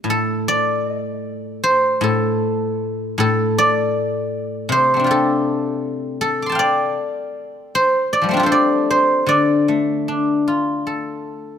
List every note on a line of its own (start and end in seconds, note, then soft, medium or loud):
0.00 2.00 A2 soft
0.00 0.81 A3 soft
0.00 0.53 C4 soft
0.00 0.38 D4 soft
0.00 0.11 F4 soft
0.10 2.03 A4 medium
0.48 2.33 D5 medium
1.64 3.62 C5 medium
2.01 3.17 A2 medium
2.01 3.19 A4 medium
3.18 4.70 A2 soft
3.18 5.10 A4 medium
3.58 5.43 D5 medium
4.69 6.96 C3 soft
4.69 6.70 C5 medium
4.94 8.26 A3 soft
4.94 7.97 C4 soft
4.99 7.79 D4 soft
5.04 7.57 F4 soft
5.04 7.42 G4 soft
5.11 6.21 A4 medium
6.21 8.40 A4 medium
6.42 7.77 C6 soft
6.42 7.64 D6 soft
6.49 8.07 G5 medium
6.49 7.94 A5 soft
6.55 8.22 F5 medium
6.59 8.12 D5 medium
7.75 8.46 C5 medium
8.13 8.51 D5 medium
8.22 8.46 F3 soft
8.22 8.43 G3 soft
8.29 9.68 A3 soft
8.29 11.31 C4 soft
8.34 10.08 D4 soft
8.34 10.47 F4 soft
8.40 10.75 G4 soft
8.40 10.63 A4 soft
8.46 8.90 C5 medium
8.52 9.28 D5 medium
8.90 10.89 C5 medium
9.26 11.58 D3 soft
9.26 11.58 D5 medium
9.68 11.28 A3 soft
10.08 11.58 D4 soft
10.48 11.58 F4 soft
10.87 11.58 A4 soft